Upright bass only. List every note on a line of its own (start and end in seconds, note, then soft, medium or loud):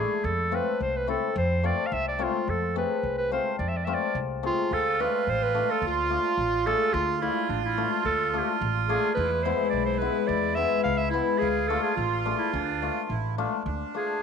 0.24 0.58 F2 loud
0.80 1.14 C2 medium
1.36 1.69 F2 loud
1.92 2.25 C2 loud
2.48 2.81 F2 medium
3.03 3.37 C2 medium
3.59 3.93 F2 medium
4.15 4.48 C2 medium
4.71 5.04 D2 medium
5.27 5.60 A1 medium
5.82 6.15 D2 medium
6.37 6.71 A1 medium
6.94 7.27 D2 loud
7.49 7.83 A1 medium
8.05 8.39 D2 medium
8.61 8.95 A1 loud
9.17 9.51 E2 loud
9.73 10.07 B1 medium
10.29 10.63 E2 loud
10.86 11.19 C#2 medium
11.42 11.75 D2 medium
11.97 12.31 A1 medium
12.54 12.87 D2 loud
13.10 13.43 A1 medium
13.66 13.83 D2 loud